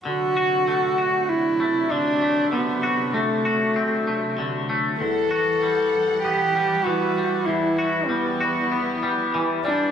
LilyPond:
<<
  \new Staff \with { instrumentName = "Cello" } { \time 4/4 \key d \mixolydian \tempo 4 = 97 fis'2 e'4 d'4 | b4 a2 r4 | a'2 g'4 fis'4 | e'4 b2 r8 d'8 | }
  \new Staff \with { instrumentName = "Clean electric guitar" } { \time 4/4 \key d \mixolydian d8 fis'8 a8 fis'4 a8 d8 a8 | d8 fis'8 a8 fis'8 c'8 a8 d8 a8 | e,8 fis'8 g4 b8 g8 e8 g8 | e,8 fis'8 g8 fis'8 b8 g8 e8 g8 | }
  \new Staff \with { instrumentName = "String section" } { \clef bass \time 4/4 \key d \mixolydian << { d'1~ | d'1 | fis''1 | e'1 | } \\ { <c fis>1~ | <c fis>1 | <e g>1~ | <e g>1 | } >> }
>>